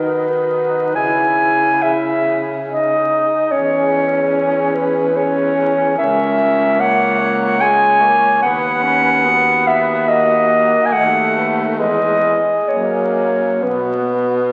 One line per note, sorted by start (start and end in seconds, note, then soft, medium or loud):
0.00 0.95 D#3 soft
0.00 0.97 D#4 soft
0.00 0.94 F#4 soft
0.00 0.97 B4 soft
0.95 3.21 C#3 soft
0.95 1.82 E4 soft
0.95 1.82 G#4 soft
0.95 1.84 G#5 medium
1.82 2.40 E4 soft
1.82 3.22 G#4 soft
1.82 2.41 E5 soft
2.68 3.54 D#4 soft
2.68 3.52 D#5 medium
3.51 5.93 E2 soft
3.51 5.14 C#4 soft
3.51 5.11 G#4 soft
3.51 4.76 C#5 medium
4.75 5.18 B4 soft
5.14 5.95 C#4 soft
5.14 5.95 G#4 soft
5.14 5.97 C#5 medium
5.96 8.39 C#2 soft
5.96 6.75 C#4 soft
5.96 6.80 A#4 soft
5.96 6.82 E5 medium
6.79 7.62 A#3 soft
6.79 7.19 C#5 soft
6.79 7.63 F#5 medium
7.20 8.40 C#5 soft
7.61 8.03 G#3 soft
7.61 8.42 G#5 medium
8.01 8.42 A#3 soft
8.42 10.76 D#2 medium
8.42 8.84 B3 soft
8.42 9.26 B4 soft
8.42 9.69 F#5 medium
8.83 9.27 C#4 soft
9.25 10.09 B3 soft
9.25 10.96 F#4 soft
9.67 10.10 E5 medium
10.08 10.94 A#3 soft
10.08 10.87 D#5 medium
10.86 10.94 G#5 soft
10.92 11.81 D#2 soft
10.92 11.80 A3 soft
10.92 11.23 A4 soft
10.92 11.50 F#5 medium
11.35 11.78 B4 soft
11.78 12.39 E2 soft
11.78 12.39 G#3 soft
11.78 12.26 B4 soft
11.78 12.70 D#5 medium
12.24 13.33 G#4 soft
12.67 13.60 F#2 soft
12.67 13.64 A#3 soft
12.67 13.65 C#5 medium
13.63 14.52 B2 soft
13.63 14.52 B3 soft
13.63 14.47 F#4 soft
13.63 14.52 B4 soft